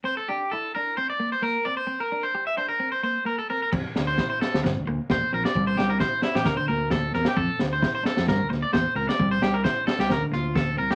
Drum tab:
CC |----------------|----------------|x---------------|----------------|
SD |----------------|----------------|--o-o-ooo---o--o|--o-o-ooo---o-oo|
BD |----------------|----------------|o---o---o---o---|o---o---o---o---|

CC |----------------|----------------|
SD |--o-o-ooo-o-o--o|--o-o-ooo-o-o--o|
BD |o---o---o---o---|o---o---o---o---|